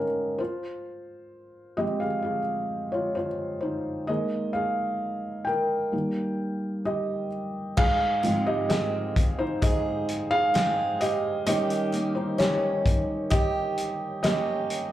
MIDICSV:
0, 0, Header, 1, 4, 480
1, 0, Start_track
1, 0, Key_signature, -4, "major"
1, 0, Tempo, 923077
1, 206, Time_signature, 4, 2, 24, 8
1, 7759, End_track
2, 0, Start_track
2, 0, Title_t, "Felt piano"
2, 0, Program_c, 0, 0
2, 0, Control_c, 0, 64, 127
2, 0, Note_on_c, 0, 44, 42
2, 0, Note_on_c, 0, 51, 37
2, 0, Note_on_c, 0, 60, 48
2, 0, Note_on_c, 0, 61, 43
2, 0, Note_on_c, 0, 68, 47
2, 0, Note_on_c, 0, 70, 59
2, 0, Note_on_c, 0, 75, 63
2, 0, Note_on_c, 0, 77, 62
2, 200, Note_on_c, 0, 72, 64
2, 209, Note_on_c, 0, 65, 54
2, 214, Note_off_c, 0, 61, 0
2, 214, Control_c, 0, 64, 0
2, 215, Note_off_c, 0, 51, 0
2, 216, Note_off_c, 0, 75, 0
2, 217, Note_off_c, 0, 60, 0
2, 217, Note_off_c, 0, 68, 0
2, 217, Note_off_c, 0, 77, 0
2, 218, Note_off_c, 0, 44, 0
2, 218, Note_off_c, 0, 70, 0
2, 318, Control_c, 0, 64, 127
2, 907, Note_off_c, 0, 65, 0
2, 920, Note_on_c, 0, 75, 71
2, 921, Note_on_c, 0, 53, 43
2, 926, Note_on_c, 0, 56, 38
2, 926, Note_on_c, 0, 60, 47
2, 929, Note_on_c, 0, 67, 54
2, 945, Note_off_c, 0, 72, 0
2, 1039, Note_off_c, 0, 67, 0
2, 1040, Note_on_c, 0, 77, 69
2, 1047, Note_off_c, 0, 75, 0
2, 1049, Note_on_c, 0, 68, 53
2, 1067, Note_off_c, 0, 77, 0
2, 1076, Note_off_c, 0, 68, 0
2, 1157, Note_on_c, 0, 77, 66
2, 1167, Note_on_c, 0, 68, 51
2, 1243, Note_off_c, 0, 53, 0
2, 1245, Note_off_c, 0, 56, 0
2, 1246, Note_off_c, 0, 60, 0
2, 1501, Note_off_c, 0, 77, 0
2, 1506, Note_off_c, 0, 68, 0
2, 1518, Note_on_c, 0, 73, 64
2, 1528, Note_on_c, 0, 65, 51
2, 1638, Note_on_c, 0, 72, 67
2, 1639, Note_off_c, 0, 65, 0
2, 1646, Note_off_c, 0, 73, 0
2, 1648, Note_on_c, 0, 65, 51
2, 1693, Note_off_c, 0, 72, 0
2, 1702, Note_off_c, 0, 65, 0
2, 1875, Note_on_c, 0, 72, 61
2, 1886, Note_on_c, 0, 63, 49
2, 2104, Note_off_c, 0, 72, 0
2, 2109, Note_off_c, 0, 63, 0
2, 2118, Note_on_c, 0, 75, 77
2, 2122, Note_on_c, 0, 51, 42
2, 2126, Note_on_c, 0, 56, 40
2, 2129, Note_on_c, 0, 58, 48
2, 2129, Note_on_c, 0, 68, 60
2, 2133, Control_c, 0, 64, 0
2, 2217, Control_c, 0, 64, 127
2, 2345, Note_off_c, 0, 75, 0
2, 2351, Note_off_c, 0, 68, 0
2, 2356, Note_on_c, 0, 77, 75
2, 2367, Note_on_c, 0, 68, 56
2, 2823, Note_off_c, 0, 51, 0
2, 2825, Note_off_c, 0, 56, 0
2, 2826, Note_off_c, 0, 68, 0
2, 2827, Note_off_c, 0, 58, 0
2, 2832, Note_on_c, 0, 79, 73
2, 2845, Note_on_c, 0, 70, 60
2, 2856, Note_off_c, 0, 77, 0
2, 3079, Note_on_c, 0, 51, 39
2, 3082, Note_on_c, 0, 55, 34
2, 3085, Note_on_c, 0, 58, 41
2, 3092, Control_c, 0, 64, 0
2, 3169, Control_c, 0, 64, 127
2, 3538, Note_off_c, 0, 79, 0
2, 3545, Note_off_c, 0, 70, 0
2, 3564, Note_on_c, 0, 67, 56
2, 3564, Note_on_c, 0, 75, 70
2, 3782, Note_off_c, 0, 51, 0
2, 3783, Note_off_c, 0, 55, 0
2, 3785, Note_off_c, 0, 58, 0
2, 4025, Note_off_c, 0, 67, 0
2, 4042, Note_on_c, 0, 77, 99
2, 4046, Note_on_c, 0, 68, 79
2, 4054, Control_c, 0, 64, 0
2, 4060, Note_off_c, 0, 75, 0
2, 4132, Control_c, 0, 64, 127
2, 4281, Note_on_c, 0, 44, 51
2, 4285, Note_on_c, 0, 53, 48
2, 4289, Note_on_c, 0, 60, 52
2, 4385, Note_off_c, 0, 68, 0
2, 4402, Note_on_c, 0, 75, 81
2, 4403, Note_on_c, 0, 67, 65
2, 4415, Note_off_c, 0, 77, 0
2, 4512, Note_off_c, 0, 75, 0
2, 4516, Note_off_c, 0, 67, 0
2, 4520, Note_on_c, 0, 75, 87
2, 4521, Note_on_c, 0, 68, 73
2, 4863, Note_off_c, 0, 68, 0
2, 4881, Note_on_c, 0, 72, 87
2, 4884, Note_on_c, 0, 63, 63
2, 4894, Note_off_c, 0, 75, 0
2, 4983, Note_off_c, 0, 44, 0
2, 4985, Note_off_c, 0, 53, 0
2, 4987, Note_off_c, 0, 60, 0
2, 4997, Note_off_c, 0, 63, 0
2, 5000, Note_on_c, 0, 75, 84
2, 5004, Note_on_c, 0, 68, 68
2, 5007, Note_off_c, 0, 72, 0
2, 5345, Note_off_c, 0, 68, 0
2, 5360, Note_on_c, 0, 77, 115
2, 5364, Note_on_c, 0, 68, 76
2, 5374, Note_off_c, 0, 75, 0
2, 5704, Note_off_c, 0, 68, 0
2, 5723, Note_on_c, 0, 75, 88
2, 5728, Note_on_c, 0, 67, 70
2, 5734, Note_off_c, 0, 77, 0
2, 5950, Note_off_c, 0, 67, 0
2, 5955, Note_off_c, 0, 75, 0
2, 5961, Note_on_c, 0, 51, 56
2, 5963, Note_on_c, 0, 75, 91
2, 5964, Note_on_c, 0, 55, 49
2, 5968, Note_on_c, 0, 61, 59
2, 5970, Note_on_c, 0, 67, 75
2, 5972, Control_c, 0, 64, 0
2, 6060, Control_c, 0, 64, 127
2, 6304, Note_off_c, 0, 75, 0
2, 6307, Note_off_c, 0, 67, 0
2, 6317, Note_on_c, 0, 72, 74
2, 6323, Note_on_c, 0, 63, 58
2, 6436, Note_off_c, 0, 63, 0
2, 6439, Note_on_c, 0, 73, 87
2, 6445, Note_off_c, 0, 72, 0
2, 6448, Note_on_c, 0, 67, 64
2, 6906, Note_off_c, 0, 67, 0
2, 6918, Note_on_c, 0, 75, 87
2, 6928, Note_on_c, 0, 67, 65
2, 6937, Note_off_c, 0, 73, 0
2, 7382, Note_off_c, 0, 75, 0
2, 7387, Note_off_c, 0, 67, 0
2, 7398, Note_on_c, 0, 75, 88
2, 7409, Note_on_c, 0, 67, 65
2, 7759, Note_off_c, 0, 51, 0
2, 7759, Note_off_c, 0, 55, 0
2, 7759, Note_off_c, 0, 61, 0
2, 7759, Note_off_c, 0, 67, 0
2, 7759, Note_off_c, 0, 75, 0
2, 7759, End_track
3, 0, Start_track
3, 0, Title_t, "Steel-string acoustic guitar"
3, 0, Program_c, 1, 25
3, 4041, Note_on_c, 1, 44, 76
3, 4044, Note_on_c, 1, 68, 68
3, 4280, Note_on_c, 1, 56, 58
3, 4525, Note_on_c, 1, 60, 52
3, 4996, Note_off_c, 1, 68, 0
3, 5002, Note_on_c, 1, 68, 64
3, 5475, Note_off_c, 1, 56, 0
3, 5480, Note_off_c, 1, 60, 0
3, 5481, Note_on_c, 1, 56, 57
3, 5482, Note_off_c, 1, 68, 0
3, 5486, Note_on_c, 1, 60, 58
3, 5489, Note_on_c, 1, 68, 62
3, 5962, Note_on_c, 1, 51, 85
3, 5964, Note_off_c, 1, 44, 0
3, 5965, Note_off_c, 1, 68, 0
3, 5967, Note_on_c, 1, 67, 62
3, 6012, Note_off_c, 1, 56, 0
3, 6014, Note_off_c, 1, 60, 0
3, 6200, Note_on_c, 1, 58, 56
3, 6439, Note_on_c, 1, 61, 57
3, 6912, Note_off_c, 1, 67, 0
3, 6918, Note_on_c, 1, 67, 68
3, 7400, Note_off_c, 1, 58, 0
3, 7402, Note_off_c, 1, 67, 0
3, 7403, Note_off_c, 1, 61, 0
3, 7403, Note_on_c, 1, 58, 60
3, 7405, Note_on_c, 1, 61, 56
3, 7409, Note_on_c, 1, 67, 63
3, 7759, Note_off_c, 1, 51, 0
3, 7759, Note_off_c, 1, 58, 0
3, 7759, Note_off_c, 1, 61, 0
3, 7759, Note_off_c, 1, 67, 0
3, 7759, End_track
4, 0, Start_track
4, 0, Title_t, "Drums"
4, 4044, Note_on_c, 9, 36, 100
4, 4045, Note_on_c, 9, 49, 83
4, 4096, Note_off_c, 9, 36, 0
4, 4097, Note_off_c, 9, 49, 0
4, 4287, Note_on_c, 9, 42, 59
4, 4339, Note_off_c, 9, 42, 0
4, 4522, Note_on_c, 9, 42, 71
4, 4527, Note_on_c, 9, 38, 102
4, 4574, Note_off_c, 9, 42, 0
4, 4579, Note_off_c, 9, 38, 0
4, 4765, Note_on_c, 9, 36, 79
4, 4768, Note_on_c, 9, 42, 77
4, 4817, Note_off_c, 9, 36, 0
4, 4820, Note_off_c, 9, 42, 0
4, 5003, Note_on_c, 9, 42, 77
4, 5004, Note_on_c, 9, 36, 84
4, 5055, Note_off_c, 9, 42, 0
4, 5056, Note_off_c, 9, 36, 0
4, 5244, Note_on_c, 9, 42, 70
4, 5296, Note_off_c, 9, 42, 0
4, 5486, Note_on_c, 9, 42, 80
4, 5490, Note_on_c, 9, 38, 109
4, 5538, Note_off_c, 9, 42, 0
4, 5542, Note_off_c, 9, 38, 0
4, 5723, Note_on_c, 9, 42, 77
4, 5775, Note_off_c, 9, 42, 0
4, 5963, Note_on_c, 9, 42, 85
4, 6015, Note_off_c, 9, 42, 0
4, 6084, Note_on_c, 9, 42, 49
4, 6136, Note_off_c, 9, 42, 0
4, 6206, Note_on_c, 9, 42, 60
4, 6258, Note_off_c, 9, 42, 0
4, 6445, Note_on_c, 9, 42, 72
4, 6450, Note_on_c, 9, 38, 102
4, 6497, Note_off_c, 9, 42, 0
4, 6502, Note_off_c, 9, 38, 0
4, 6685, Note_on_c, 9, 36, 75
4, 6688, Note_on_c, 9, 42, 75
4, 6737, Note_off_c, 9, 36, 0
4, 6740, Note_off_c, 9, 42, 0
4, 6920, Note_on_c, 9, 42, 76
4, 6924, Note_on_c, 9, 36, 89
4, 6972, Note_off_c, 9, 42, 0
4, 6976, Note_off_c, 9, 36, 0
4, 7163, Note_on_c, 9, 42, 76
4, 7215, Note_off_c, 9, 42, 0
4, 7403, Note_on_c, 9, 42, 81
4, 7407, Note_on_c, 9, 38, 105
4, 7455, Note_off_c, 9, 42, 0
4, 7459, Note_off_c, 9, 38, 0
4, 7644, Note_on_c, 9, 42, 78
4, 7696, Note_off_c, 9, 42, 0
4, 7759, End_track
0, 0, End_of_file